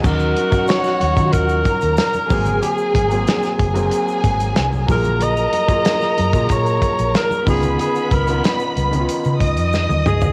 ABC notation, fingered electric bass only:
X:1
M:4/4
L:1/16
Q:1/4=93
K:Ebm
V:1 name="Fingered electric bass" clef=bass
E,,2 z4 E,, E, E,,2 z E,, z2 A,,,2 | z2 A,,,2 z2 G,,,2 z2 A,,,2 =C,,2 B,,,2- | B,,,2 z4 G,, B,, B,,2 z B,,, z2 D,,2 | z2 D,,2 z2 D,,2 z D, D,, F,,2 E,, D,,2 |]